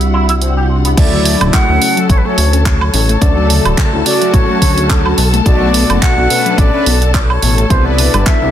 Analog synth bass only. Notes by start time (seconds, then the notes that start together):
Already playing: C2
0.97 D2
1.41 D1
1.69 D2
2.10 A1
2.38 D2
2.94 A1
3.22 D2
3.65 D1
3.93 D2
4.34 A1
4.62 D2
5.18 B1
5.46 B1
5.90 F#1
6.18 B1
6.58 A1
6.86 B1
7.43 A1
7.70 C2
8.14 G1
8.42 C2